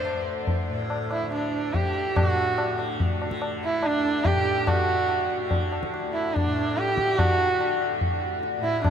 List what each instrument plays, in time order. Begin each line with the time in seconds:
Already playing: tanpura D2 A2 D3, sarangi C5
0.05 tabla na
0.13 tanpura D2
0.47 tabla tin, tabla ge
0.69 tanpura A2
0.90 tabla na
1.11 sarangi E4, tabla na
1.23 tanpura D3
1.32 sarangi D4, tabla na
1.74 tanpura D3, sarangi G4, tabla tin, tabla ge
2.16 tanpura A2, sarangi F#4, tabla na, tabla ge
2.58 tabla na
2.72 tanpura D3
2.79 tabla na
3.00 tabla tin, tabla ge
3.22 tanpura D3, tabla na
3.31 tabla ke
3.42 tabla na
3.64 sarangi E4
3.80 tanpura D2, tabla na
3.86 sarangi D4
4.25 sarangi G4, tabla na, tabla ge
4.32 tanpura A2
4.45 tabla te
4.67 sarangi F#4, tabla na, tabla ge
4.87 tanpura D3
5.09 tabla na
5.39 tanpura D3
5.51 tabla tin, tabla ge
5.72 tabla na
5.83 tabla ke
5.92 tanpura D2, tabla na
6.13 sarangi E4, tabla na
6.34 sarangi D4, tabla na, tabla ge
6.44 tanpura A2
6.58 tabla te
6.77 sarangi G4, tabla te
6.88 tabla te
6.97 tanpura D3, tabla ke
7.08 tabla te
7.18 sarangi F#4, tabla na, tabla ge
7.54 tanpura D3
7.61 tabla na
7.82 tabla na
8.01 tanpura D2, tabla tin, tabla ge
8.43 tabla te
8.58 tanpura A2, sarangi E4
8.64 tabla te
8.84 sarangi D4, tabla na, tabla ge